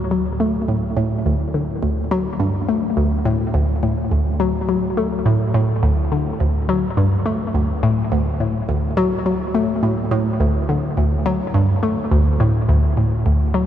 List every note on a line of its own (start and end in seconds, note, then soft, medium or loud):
0.11 0.29 F#3 medium
0.40 0.58 A3 medium
0.68 0.79 A2 medium
0.97 1.15 A2 loud
1.26 1.43 D2 loud
1.54 1.72 D3 medium
1.83 2.00 D2 medium
2.11 2.29 F#3 loud
2.40 2.58 G2 loud
2.69 2.86 A3 medium
2.97 3.15 D2 loud
3.25 3.43 A2 loud
3.54 3.72 D2 loud
3.83 4.09 A2 medium
4.12 4.29 D2 medium
4.40 4.58 F#3 loud
4.69 4.86 F#3 medium
4.97 5.15 A3 medium
5.26 5.36 A2 loud
5.54 5.72 A2 loud
5.83 6.01 D2 loud
6.12 6.29 D3 medium
6.40 6.58 D2 medium
6.69 6.87 F#3 medium
6.97 7.15 G2 loud
7.26 7.43 A3 medium
7.54 7.72 D2 medium
7.83 8.01 A2 loud
8.12 8.29 D2 loud
8.40 8.67 A2 medium
8.69 8.86 D2 medium
8.97 9.15 F#3 loud
9.26 9.43 F#3 medium
9.54 9.72 A3 medium
9.83 9.93 A2 medium
10.11 10.29 A2 loud
10.40 10.58 D2 loud
10.69 10.86 D3 medium
10.97 11.15 D2 medium
11.26 11.43 F#3 medium
11.54 11.72 G2 loud
11.83 12.01 A3 medium
12.11 12.29 D2 loud
12.40 12.58 A2 loud
12.69 12.86 D2 loud
12.97 13.24 A2 medium
13.26 13.44 D2 medium
13.54 13.66 F#3 loud